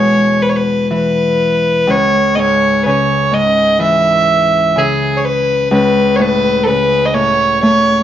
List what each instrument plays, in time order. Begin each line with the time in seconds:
Already playing: harp E2 B2 G#3, fiddle C#5
0.42 fiddle B4
0.49 fiddle C#5
0.56 fiddle B4
0.90 harp E3, fiddle B4
1.87 harp C#2, fiddle C#5
2.36 harp G#2, fiddle C#5 D#5
2.83 harp C#3, fiddle B4 C#5
3.32 harp G#2, fiddle D#5
3.79 harp E3, fiddle E5
4.76 harp C#3, fiddle G#4
5.17 fiddle C#5
5.25 fiddle B4
5.71 harp C#2, fiddle B4
6.16 harp A2, fiddle C#5
6.22 fiddle B4
6.63 fiddle A4 B4
6.67 harp C#3
7.06 fiddle D#5
7.14 harp A2, fiddle C#5
7.62 harp A3, fiddle C#5